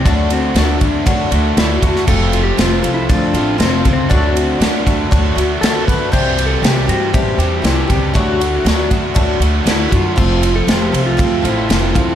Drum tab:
CC |----------------|x---------------|----------------|x---------------|
RD |x-x-x-x-x-x-x-x-|--x-x-x-x-x-x-x-|x-x-x-x-x-x-x-x-|--x-x-x-x-x-x-x-|
SD |----o-------o--o|----o-------o---|----o-------o---|----o-------o---|
BD |o-----o-o-----o-|o-------o-----o-|o-----o-o-----o-|o-------o-----o-|

CC |----------------|x---------------|
RD |x-x-x-x-x-x-x-x-|--x-x-x-x-x-x-x-|
SD |----o-------o---|----o-------o---|
BD |o-----o-o-----o-|o-------o-----o-|